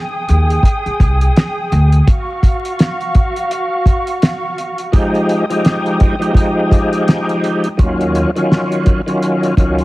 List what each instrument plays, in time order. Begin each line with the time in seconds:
Already playing: string section G#4 G5 D#6
0.29 upright bass D#2, closed hi-hat
0.50 closed hi-hat
0.63 kick, closed hi-hat
0.86 muted upright bass stroke, closed hi-hat
1.00 upright bass C2, kick, closed hi-hat
1.21 closed hi-hat
1.36 snare, closed hi-hat
1.72 upright bass D2, closed hi-hat
1.92 closed hi-hat
2.07 string section F#4 F5 C#6, kick, closed hi-hat
2.43 kick, closed hi-hat
2.65 closed hi-hat
2.79 snare, closed hi-hat
3.01 closed hi-hat
3.15 kick, closed hi-hat
3.36 closed hi-hat
3.51 closed hi-hat
3.86 kick, closed hi-hat
4.07 closed hi-hat
4.22 snare, closed hi-hat
4.58 closed hi-hat
4.78 closed hi-hat
4.92 tonewheel organ F3 G#3 D#4 G4, string section G#3 G5 D#6, kick, closed hi-hat
5.15 closed hi-hat
5.29 closed hi-hat
5.50 tonewheel organ F3 G#3 D#4 G4, closed hi-hat
5.65 snare, closed hi-hat
5.86 closed hi-hat
6.00 kick, closed hi-hat
6.19 tonewheel organ F3 G#3 D#4 G4, closed hi-hat
6.32 tonewheel organ F3 G#3 D#4 G4, kick
6.37 closed hi-hat
6.71 kick, closed hi-hat
6.93 closed hi-hat
7.08 snare, closed hi-hat
7.29 closed hi-hat
7.44 closed hi-hat
7.64 closed hi-hat
7.77 upright bass D#2, tonewheel organ D#3 F#3 C#4 F4, kick, closed hi-hat
8.01 closed hi-hat
8.15 closed hi-hat
8.36 tonewheel organ D#3 F#3 C#4 F4, closed hi-hat
8.52 snare
8.72 closed hi-hat
8.86 kick, closed hi-hat
9.06 tonewheel organ D#3 F#3 C#4 F4, closed hi-hat
9.23 closed hi-hat
9.43 closed hi-hat
9.57 upright bass C#2, tonewheel organ D#3 F#3 C#4 F4, kick, closed hi-hat
9.79 closed hi-hat